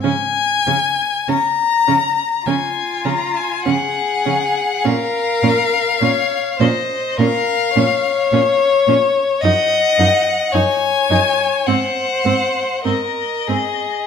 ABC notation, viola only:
X:1
M:4/4
L:1/8
Q:1/4=51
K:Db
V:1 name="Viola"
D D D D D D D D | D D D D D D D D | E E E E C C C C |]